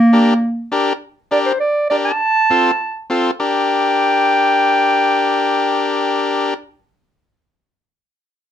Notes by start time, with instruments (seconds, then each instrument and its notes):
Already playing: clarinet A#3
0.13 transistor combo organ D4 G4 A#4
0.72 transistor combo organ D4 G4 A#4
1.31 transistor combo organ D4 G4 A#4, clarinet D5
1.46 clarinet C5
1.60 clarinet D5
1.90 transistor combo organ D4 G4 A#4, clarinet D5
2.05 clarinet A5
2.50 transistor combo organ C4 F4 A4
3.10 transistor combo organ C4 F4 A4
3.39 transistor combo organ D4 G4 A#4, clarinet G5